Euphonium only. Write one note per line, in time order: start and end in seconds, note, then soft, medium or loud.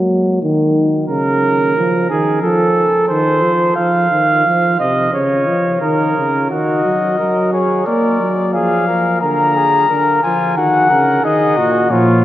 0.00 0.40 F#3 medium
0.42 1.08 D#3 medium
1.09 1.75 C#3 medium
1.77 2.09 F3 medium
2.10 2.42 D#3 medium
2.43 2.85 F3 medium
3.10 3.44 D#3 medium
3.42 3.77 F3 medium
3.78 4.11 F3 medium
4.11 4.45 D#3 medium
4.46 4.79 F3 medium
4.80 5.12 C3 medium
5.13 5.48 C#3 medium
5.47 5.82 F3 medium
5.82 6.16 D#3 medium
6.17 6.51 C#3 medium
6.51 6.83 D#3 medium
6.85 7.19 F#3 medium
7.20 7.86 F#3 medium
7.88 8.20 A#3 medium
8.21 8.57 F#3 medium
8.55 9.22 F3 medium
9.22 9.89 D3 medium
9.90 10.23 D3 medium
10.24 10.58 F3 medium
10.57 10.90 D#3 medium
10.90 11.22 C#3 medium
11.23 11.59 D#3 medium
11.57 11.90 A#2 medium
11.91 12.25 F3 medium